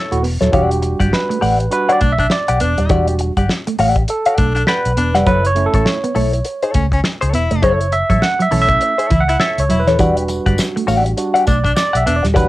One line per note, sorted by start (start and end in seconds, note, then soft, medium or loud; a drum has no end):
0.00 0.17 E4 medium
0.00 0.17 A4 medium
0.00 0.18 C#5 loud
0.11 0.24 D#1 medium
0.11 0.22 A3 medium
0.11 0.22 E4 medium
0.11 0.22 F#4 medium
0.11 closed hi-hat medium
0.23 0.39 E1 medium
0.23 0.36 B3 medium
0.23 muted clean electric guitar stroke soft
0.23 open hi-hat medium
0.41 0.51 D#1 medium
0.41 0.49 F#3 medium
0.41 0.51 F#3 medium
0.41 0.56 E4 soft
0.41 0.52 A4 medium
0.41 0.53 C#5 medium
0.41 snare soft
0.41 closed hi-hat medium
0.52 0.93 E1 loud
0.52 0.66 E3 medium
0.52 1.38 G3 medium
0.52 1.38 D4 soft
0.52 1.38 F#4 medium
0.52 0.76 G4 medium
0.52 1.09 G4 medium
0.52 0.71 D5 medium
0.52 0.70 F#5 loud
0.52 kick loud
0.52 closed hi-hat medium
0.71 closed hi-hat medium
0.82 muted clean electric guitar stroke soft
0.82 closed hi-hat medium
1.00 1.10 G1 medium
1.00 1.09 G3 medium
1.00 1.15 G4 soft
1.00 1.15 D5 medium
1.00 1.15 F#5 medium
1.00 kick medium
1.00 closed hi-hat medium
1.12 1.71 B4 medium
1.12 muted clean electric guitar stroke soft
1.12 snare loud
1.29 1.38 A3 medium
1.29 muted clean electric guitar stroke soft
1.29 closed hi-hat medium
1.41 1.67 A1 medium
1.41 1.55 A3 medium
1.41 1.65 G4 medium
1.41 1.59 D5 medium
1.41 1.58 F#5 loud
1.41 open hi-hat medium
1.60 muted clean electric guitar stroke soft
1.60 closed hi-hat medium
1.70 1.98 G3 medium
1.70 1.98 D4 soft
1.70 1.98 F#4 medium
1.70 1.90 B4 loud
1.70 muted clean electric guitar stroke soft
1.70 closed hi-hat medium
1.89 2.00 G4 medium
1.89 1.91 C#5 medium
1.89 2.00 D5 medium
1.89 2.12 D5 medium
1.89 2.00 F#5 medium
1.89 closed hi-hat soft
2.01 2.26 B1 medium
2.01 2.14 A3 medium
2.01 2.12 D4 medium
2.01 kick medium
2.01 closed hi-hat medium
2.12 2.32 E5 medium
2.18 2.27 D4 loud
2.18 muted clean electric guitar stroke soft
2.18 kick medium
2.18 closed hi-hat soft
2.30 3.16 D5 medium
2.30 muted clean electric guitar stroke soft
2.30 snare loud
2.48 2.59 B1 medium
2.48 2.59 G4 medium
2.48 2.59 D5 medium
2.48 2.60 F#5 medium
2.48 closed hi-hat medium
2.60 2.75 E1 medium
2.60 2.73 B3 medium
2.60 3.01 D4 loud
2.60 muted clean electric guitar stroke medium
2.60 closed hi-hat medium
2.78 2.90 D#1 medium
2.78 2.86 G3 medium
2.78 muted clean electric guitar stroke soft
2.78 closed hi-hat soft
2.89 3.29 E1 loud
2.89 3.03 E3 medium
2.89 3.31 G3 medium
2.89 3.31 D4 soft
2.89 3.32 F#4 medium
2.89 3.13 G4 medium
2.89 3.08 D5 medium
2.89 3.06 F#5 medium
2.89 kick loud
2.89 closed hi-hat medium
3.08 muted clean electric guitar stroke soft
3.08 closed hi-hat medium
3.19 muted clean electric guitar stroke soft
3.19 closed hi-hat medium
3.37 3.47 G1 medium
3.37 3.46 G3 medium
3.37 3.53 G4 medium
3.37 3.52 D5 soft
3.37 3.52 F#5 medium
3.37 kick medium
3.37 closed hi-hat medium
3.49 muted clean electric guitar stroke soft
3.49 snare loud
3.67 3.76 A3 medium
3.67 muted clean electric guitar stroke soft
3.67 closed hi-hat medium
3.79 4.04 A1 loud
3.79 3.92 A3 medium
3.79 4.02 G4 medium
3.79 3.97 D5 medium
3.79 3.96 F#5 medium
3.79 open hi-hat medium
3.96 muted clean electric guitar stroke soft
3.96 kick medium
3.96 closed hi-hat medium
4.08 4.70 A4 medium
4.08 muted clean electric guitar stroke soft
4.08 closed hi-hat medium
4.26 4.37 G4 medium
4.26 4.38 D5 medium
4.26 4.38 F#5 medium
4.26 closed hi-hat medium
4.38 4.63 B1 loud
4.38 4.51 A3 medium
4.38 4.49 D4 medium
4.38 muted clean electric guitar stroke soft
4.38 kick loud
4.38 closed hi-hat medium
4.55 4.63 D4 loud
4.55 muted clean electric guitar stroke soft
4.55 closed hi-hat soft
4.67 4.91 G4 medium
4.67 5.26 B4 loud
4.67 4.91 D5 loud
4.67 4.92 F#5 loud
4.67 muted clean electric guitar stroke soft
4.67 snare loud
4.85 4.95 B1 medium
4.85 closed hi-hat medium
4.97 5.16 E1 medium
4.97 5.10 B3 medium
4.97 5.16 D4 medium
4.97 muted clean electric guitar stroke soft
4.97 closed hi-hat medium
5.14 5.25 F1 loud
5.14 5.23 G3 medium
5.14 5.27 G4 medium
5.14 5.27 D5 medium
5.14 5.29 F#5 medium
5.14 snare soft
5.14 closed hi-hat medium
5.26 5.66 F#1 loud
5.26 5.39 F#3 medium
5.26 5.50 E4 medium
5.26 5.44 A4 medium
5.26 5.45 B4 loud
5.26 5.43 C#5 medium
5.26 kick loud
5.26 closed hi-hat medium
5.44 5.65 C#5 loud
5.44 muted clean electric guitar stroke soft
5.44 closed hi-hat medium
5.55 5.97 A3 medium
5.55 5.98 C#4 medium
5.55 5.98 E4 medium
5.55 muted clean electric guitar stroke soft
5.55 closed hi-hat medium
5.66 5.86 A4 medium
5.74 5.84 A1 medium
5.74 5.82 A3 medium
5.74 5.89 E4 medium
5.74 5.89 A4 medium
5.74 5.89 C#5 medium
5.74 kick medium
5.74 closed hi-hat medium
5.85 6.70 C#5 medium
5.85 snare loud
6.04 6.12 B3 medium
6.04 muted clean electric guitar stroke medium
6.04 closed hi-hat soft
6.15 6.40 B1 medium
6.15 6.28 A3 medium
6.15 6.38 E4 medium
6.15 6.33 A4 medium
6.15 6.32 C#5 medium
6.15 open hi-hat medium
6.33 muted clean electric guitar stroke soft
6.33 closed hi-hat medium
6.45 muted clean electric guitar stroke soft
6.45 closed hi-hat medium
6.63 6.73 E4 medium
6.63 6.74 A4 medium
6.63 6.74 C#5 medium
6.63 closed hi-hat medium
6.74 6.99 C#2 loud
6.74 6.87 A3 medium
6.74 6.86 C#4 medium
6.74 muted clean electric guitar stroke soft
6.74 kick medium
6.74 closed hi-hat medium
6.92 7.00 C#4 loud
6.92 muted clean electric guitar stroke medium
6.92 kick medium
6.92 closed hi-hat soft
7.04 muted clean electric guitar stroke soft
7.04 snare medium
7.21 7.32 C#2 medium
7.21 7.32 E4 medium
7.21 7.33 A4 medium
7.21 7.33 C#5 loud
7.21 closed hi-hat medium
7.33 7.49 E1 medium
7.33 7.46 B3 medium
7.33 7.74 E4 medium
7.33 muted clean electric guitar stroke soft
7.33 closed hi-hat medium
7.51 7.63 F1 medium
7.51 7.60 A3 medium
7.51 muted clean electric guitar stroke medium
7.51 closed hi-hat medium
7.63 8.02 F#1 loud
7.63 7.76 F#3 medium
7.63 7.86 E4 medium
7.63 7.80 A4 loud
7.63 7.94 C#5 medium
7.63 7.80 C#5 loud
7.63 kick loud
7.63 closed hi-hat medium
7.81 muted clean electric guitar stroke soft
7.81 closed hi-hat medium
7.92 8.23 E5 loud
7.92 muted clean electric guitar stroke soft
7.92 closed hi-hat medium
8.10 8.20 A1 medium
8.10 8.19 F#3 medium
8.10 8.25 E4 medium
8.10 8.25 A4 medium
8.10 8.25 C#5 medium
8.10 kick medium
8.10 closed hi-hat medium
8.21 8.43 F#5 loud
8.21 muted clean electric guitar stroke soft
8.21 snare loud
8.39 8.48 F#3 medium
8.39 8.60 E5 medium
8.39 muted clean electric guitar stroke soft
8.39 closed hi-hat medium
8.51 8.76 B1 medium
8.51 8.64 E3 medium
8.51 8.93 A3 medium
8.51 8.93 C#4 medium
8.51 8.75 E4 medium
8.51 8.94 E4 medium
8.51 8.69 A4 medium
8.51 8.68 C#5 medium
8.51 open hi-hat medium
8.62 9.23 E5 loud
8.69 muted clean electric guitar stroke soft
8.69 kick loud
8.69 closed hi-hat medium
8.81 muted clean electric guitar stroke soft
8.81 closed hi-hat medium
8.98 9.09 E4 medium
8.98 9.10 A4 medium
8.98 9.10 C#5 medium
8.98 closed hi-hat medium
9.10 9.36 C#2 medium
9.10 9.23 E3 medium
9.10 9.22 E4 medium
9.10 kick loud
9.10 closed hi-hat medium
9.20 9.39 F#5 loud
9.28 9.36 E4 loud
9.28 muted clean electric guitar stroke soft
9.28 closed hi-hat soft
9.40 9.63 E4 medium
9.40 9.64 A4 loud
9.40 9.64 C#5 medium
9.40 9.61 E5 loud
9.40 muted clean electric guitar stroke soft
9.40 snare medium
9.58 9.68 C#2 medium
9.58 9.80 C#5 medium
9.58 closed hi-hat medium
9.69 9.88 E1 medium
9.69 9.82 F#3 medium
9.69 9.89 E4 loud
9.69 muted clean electric guitar stroke soft
9.69 closed hi-hat medium
9.79 10.64 B4 medium
9.87 9.99 D#1 loud
9.87 9.96 E3 medium
9.87 10.03 E4 medium
9.87 9.99 A4 soft
9.87 9.99 C#5 medium
9.87 snare soft
9.87 closed hi-hat soft
9.98 10.39 E1 loud
9.98 10.12 E3 medium
9.98 11.16 G3 medium
9.98 11.16 D4 soft
9.98 11.17 F#4 medium
9.98 10.22 G4 medium
9.98 10.17 D5 medium
9.98 10.16 F#5 loud
9.98 kick loud
9.98 closed hi-hat medium
9.98 tambourine soft
10.17 muted clean electric guitar stroke soft
10.17 closed hi-hat medium
10.28 muted clean electric guitar stroke soft
10.28 closed hi-hat medium
10.28 tambourine medium
10.46 10.56 G1 medium
10.46 10.55 G3 medium
10.46 10.61 G4 soft
10.46 10.61 D5 medium
10.46 10.61 F#5 medium
10.46 kick medium
10.46 closed hi-hat medium
10.58 muted clean electric guitar stroke soft
10.58 snare loud
10.58 tambourine loud
10.76 10.85 A3 medium
10.76 muted clean electric guitar stroke soft
10.76 closed hi-hat medium
10.87 11.12 A1 loud
10.87 11.01 A3 medium
10.87 11.11 G4 medium
10.87 11.05 D5 medium
10.87 11.04 F#5 medium
10.87 open hi-hat medium
10.87 tambourine medium
11.05 muted clean electric guitar stroke soft
11.05 closed hi-hat medium
11.17 11.44 G3 soft
11.17 11.44 D4 medium
11.17 11.44 F#4 medium
11.17 muted clean electric guitar stroke soft
11.17 closed hi-hat medium
11.17 tambourine soft
11.34 11.45 G4 medium
11.34 11.45 D5 medium
11.34 11.46 F#5 medium
11.34 closed hi-hat medium
11.47 11.72 B1 medium
11.47 11.60 A3 medium
11.47 11.58 D4 medium
11.47 11.76 D5 medium
11.47 kick medium
11.47 closed hi-hat medium
11.47 tambourine medium
11.64 11.72 D4 loud
11.64 muted clean electric guitar stroke soft
11.64 kick medium
11.64 closed hi-hat soft
11.76 11.97 D5 loud
11.76 muted clean electric guitar stroke soft
11.76 snare medium
11.76 tambourine loud
11.93 12.04 B1 medium
11.93 12.04 G4 medium
11.93 12.04 D5 medium
11.93 12.15 E5 medium
11.93 12.05 F#5 medium
11.93 closed hi-hat medium
12.05 12.21 E1 medium
12.05 12.19 B3 medium
12.05 12.25 D4 loud
12.05 muted clean electric guitar stroke soft
12.05 closed hi-hat loud
12.16 12.25 D5 medium
12.23 12.36 D#1 loud
12.23 12.33 G3 medium
12.23 muted clean electric guitar stroke soft
12.23 snare soft
12.23 closed hi-hat medium
12.34 12.48 E1 loud
12.34 12.48 E3 medium
12.34 12.48 F#3 medium
12.34 12.48 G3 medium
12.34 12.48 D4 medium
12.34 12.48 G4 medium
12.34 12.48 B4 medium
12.34 12.48 D5 medium
12.34 12.48 F#5 medium
12.34 kick loud
12.34 closed hi-hat medium
12.34 tambourine soft